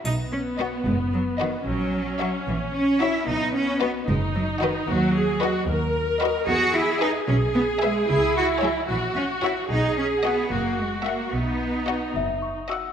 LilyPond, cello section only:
\new Staff \with { instrumentName = "Cello section" } { \time 6/8 \key b \major \tempo 4. = 74 dis'8 cis'8 b8 gis8 fis8 dis8 | fis4 fis8 e8 cis'8 e'8 | dis'8 cis'8 b8 gis8 fis8 dis8 | fis4 r2 |
fis'8 e'8 dis'8 cis'8 b8 gis8 | gis'8 fis'8 fis8 e8 cis'8 e'8 | dis'8 cis'8 b8 ais8 gis8 ais8 | b4. r4. | }